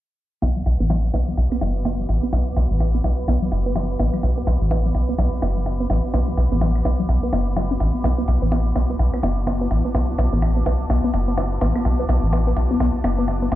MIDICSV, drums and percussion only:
0, 0, Header, 1, 3, 480
1, 0, Start_track
1, 0, Key_signature, 2, "minor"
1, 0, Tempo, 476190
1, 426, Time_signature, 4, 2, 24, 8
1, 13661, End_track
2, 0, Start_track
2, 0, Title_t, "Percussion blips"
2, 426, Note_on_c, 9, 61, 66
2, 527, Note_off_c, 9, 61, 0
2, 666, Note_on_c, 9, 61, 39
2, 767, Note_off_c, 9, 61, 0
2, 906, Note_on_c, 9, 61, 73
2, 1007, Note_off_c, 9, 61, 0
2, 1146, Note_on_c, 9, 61, 66
2, 1247, Note_off_c, 9, 61, 0
2, 1386, Note_on_c, 9, 61, 38
2, 1487, Note_off_c, 9, 61, 0
2, 1626, Note_on_c, 9, 61, 74
2, 1727, Note_off_c, 9, 61, 0
2, 1866, Note_on_c, 9, 61, 64
2, 1967, Note_off_c, 9, 61, 0
2, 2106, Note_on_c, 9, 61, 41
2, 2207, Note_off_c, 9, 61, 0
2, 2346, Note_on_c, 9, 61, 73
2, 2447, Note_off_c, 9, 61, 0
2, 2586, Note_on_c, 9, 61, 72
2, 2687, Note_off_c, 9, 61, 0
2, 2826, Note_on_c, 9, 61, 40
2, 2927, Note_off_c, 9, 61, 0
2, 3066, Note_on_c, 9, 61, 69
2, 3167, Note_off_c, 9, 61, 0
2, 3306, Note_on_c, 9, 61, 72
2, 3407, Note_off_c, 9, 61, 0
2, 3546, Note_on_c, 9, 61, 44
2, 3647, Note_off_c, 9, 61, 0
2, 3786, Note_on_c, 9, 61, 71
2, 3886, Note_off_c, 9, 61, 0
2, 4026, Note_on_c, 9, 61, 72
2, 4127, Note_off_c, 9, 61, 0
2, 4266, Note_on_c, 9, 61, 44
2, 4367, Note_off_c, 9, 61, 0
2, 4506, Note_on_c, 9, 61, 78
2, 4607, Note_off_c, 9, 61, 0
2, 4746, Note_on_c, 9, 61, 76
2, 4847, Note_off_c, 9, 61, 0
2, 4986, Note_on_c, 9, 61, 39
2, 5087, Note_off_c, 9, 61, 0
2, 5226, Note_on_c, 9, 61, 69
2, 5327, Note_off_c, 9, 61, 0
2, 5466, Note_on_c, 9, 61, 74
2, 5567, Note_off_c, 9, 61, 0
2, 5706, Note_on_c, 9, 61, 38
2, 5807, Note_off_c, 9, 61, 0
2, 5946, Note_on_c, 9, 61, 74
2, 6047, Note_off_c, 9, 61, 0
2, 6186, Note_on_c, 9, 61, 74
2, 6287, Note_off_c, 9, 61, 0
2, 6426, Note_on_c, 9, 61, 45
2, 6527, Note_off_c, 9, 61, 0
2, 6666, Note_on_c, 9, 61, 73
2, 6767, Note_off_c, 9, 61, 0
2, 6906, Note_on_c, 9, 61, 66
2, 7006, Note_off_c, 9, 61, 0
2, 7146, Note_on_c, 9, 61, 41
2, 7247, Note_off_c, 9, 61, 0
2, 7386, Note_on_c, 9, 61, 77
2, 7486, Note_off_c, 9, 61, 0
2, 7626, Note_on_c, 9, 61, 73
2, 7727, Note_off_c, 9, 61, 0
2, 7866, Note_on_c, 9, 61, 42
2, 7966, Note_off_c, 9, 61, 0
2, 8106, Note_on_c, 9, 61, 71
2, 8207, Note_off_c, 9, 61, 0
2, 8346, Note_on_c, 9, 61, 41
2, 8447, Note_off_c, 9, 61, 0
2, 8586, Note_on_c, 9, 61, 67
2, 8687, Note_off_c, 9, 61, 0
2, 8826, Note_on_c, 9, 61, 65
2, 8927, Note_off_c, 9, 61, 0
2, 9066, Note_on_c, 9, 61, 39
2, 9167, Note_off_c, 9, 61, 0
2, 9306, Note_on_c, 9, 61, 77
2, 9406, Note_off_c, 9, 61, 0
2, 9546, Note_on_c, 9, 61, 65
2, 9647, Note_off_c, 9, 61, 0
2, 9786, Note_on_c, 9, 61, 38
2, 9887, Note_off_c, 9, 61, 0
2, 10026, Note_on_c, 9, 61, 70
2, 10127, Note_off_c, 9, 61, 0
2, 10266, Note_on_c, 9, 61, 69
2, 10367, Note_off_c, 9, 61, 0
2, 10506, Note_on_c, 9, 61, 40
2, 10607, Note_off_c, 9, 61, 0
2, 10746, Note_on_c, 9, 61, 61
2, 10847, Note_off_c, 9, 61, 0
2, 10986, Note_on_c, 9, 61, 66
2, 11087, Note_off_c, 9, 61, 0
2, 11226, Note_on_c, 9, 61, 41
2, 11327, Note_off_c, 9, 61, 0
2, 11466, Note_on_c, 9, 61, 65
2, 11567, Note_off_c, 9, 61, 0
2, 11706, Note_on_c, 9, 61, 70
2, 11807, Note_off_c, 9, 61, 0
2, 11946, Note_on_c, 9, 61, 39
2, 12047, Note_off_c, 9, 61, 0
2, 12186, Note_on_c, 9, 61, 70
2, 12287, Note_off_c, 9, 61, 0
2, 12426, Note_on_c, 9, 61, 67
2, 12526, Note_off_c, 9, 61, 0
2, 12666, Note_on_c, 9, 61, 36
2, 12767, Note_off_c, 9, 61, 0
2, 12905, Note_on_c, 9, 61, 68
2, 13006, Note_off_c, 9, 61, 0
2, 13146, Note_on_c, 9, 61, 71
2, 13247, Note_off_c, 9, 61, 0
2, 13386, Note_on_c, 9, 61, 38
2, 13487, Note_off_c, 9, 61, 0
2, 13626, Note_on_c, 9, 61, 66
2, 13661, Note_off_c, 9, 61, 0
2, 13661, End_track
3, 0, Start_track
3, 0, Title_t, "Drums"
3, 666, Note_on_c, 9, 42, 86
3, 767, Note_off_c, 9, 42, 0
3, 1145, Note_on_c, 9, 42, 86
3, 1246, Note_off_c, 9, 42, 0
3, 1530, Note_on_c, 9, 75, 57
3, 1626, Note_on_c, 9, 42, 82
3, 1630, Note_off_c, 9, 75, 0
3, 1727, Note_off_c, 9, 42, 0
3, 2106, Note_on_c, 9, 42, 89
3, 2207, Note_off_c, 9, 42, 0
3, 2586, Note_on_c, 9, 42, 83
3, 2687, Note_off_c, 9, 42, 0
3, 2826, Note_on_c, 9, 75, 57
3, 2927, Note_off_c, 9, 75, 0
3, 3066, Note_on_c, 9, 42, 90
3, 3166, Note_off_c, 9, 42, 0
3, 3546, Note_on_c, 9, 42, 83
3, 3647, Note_off_c, 9, 42, 0
3, 4026, Note_on_c, 9, 42, 90
3, 4126, Note_off_c, 9, 42, 0
3, 4170, Note_on_c, 9, 75, 56
3, 4270, Note_off_c, 9, 75, 0
3, 4506, Note_on_c, 9, 42, 87
3, 4606, Note_off_c, 9, 42, 0
3, 4986, Note_on_c, 9, 42, 90
3, 5086, Note_off_c, 9, 42, 0
3, 5465, Note_on_c, 9, 42, 89
3, 5466, Note_on_c, 9, 75, 58
3, 5566, Note_off_c, 9, 42, 0
3, 5567, Note_off_c, 9, 75, 0
3, 5945, Note_on_c, 9, 42, 91
3, 6046, Note_off_c, 9, 42, 0
3, 6426, Note_on_c, 9, 42, 86
3, 6527, Note_off_c, 9, 42, 0
3, 6809, Note_on_c, 9, 75, 55
3, 6906, Note_on_c, 9, 42, 89
3, 6910, Note_off_c, 9, 75, 0
3, 7007, Note_off_c, 9, 42, 0
3, 7386, Note_on_c, 9, 42, 81
3, 7487, Note_off_c, 9, 42, 0
3, 7866, Note_on_c, 9, 42, 93
3, 7966, Note_off_c, 9, 42, 0
3, 8346, Note_on_c, 9, 42, 85
3, 8446, Note_off_c, 9, 42, 0
3, 8826, Note_on_c, 9, 42, 86
3, 8927, Note_off_c, 9, 42, 0
3, 9209, Note_on_c, 9, 75, 59
3, 9306, Note_on_c, 9, 42, 84
3, 9310, Note_off_c, 9, 75, 0
3, 9407, Note_off_c, 9, 42, 0
3, 9786, Note_on_c, 9, 42, 86
3, 9887, Note_off_c, 9, 42, 0
3, 10266, Note_on_c, 9, 42, 76
3, 10367, Note_off_c, 9, 42, 0
3, 10506, Note_on_c, 9, 75, 61
3, 10607, Note_off_c, 9, 75, 0
3, 10746, Note_on_c, 9, 42, 82
3, 10847, Note_off_c, 9, 42, 0
3, 11226, Note_on_c, 9, 42, 85
3, 11326, Note_off_c, 9, 42, 0
3, 11706, Note_on_c, 9, 42, 86
3, 11807, Note_off_c, 9, 42, 0
3, 11849, Note_on_c, 9, 75, 60
3, 11950, Note_off_c, 9, 75, 0
3, 12186, Note_on_c, 9, 42, 81
3, 12287, Note_off_c, 9, 42, 0
3, 12666, Note_on_c, 9, 42, 85
3, 12767, Note_off_c, 9, 42, 0
3, 13146, Note_on_c, 9, 42, 81
3, 13146, Note_on_c, 9, 75, 66
3, 13247, Note_off_c, 9, 42, 0
3, 13247, Note_off_c, 9, 75, 0
3, 13626, Note_on_c, 9, 42, 80
3, 13661, Note_off_c, 9, 42, 0
3, 13661, End_track
0, 0, End_of_file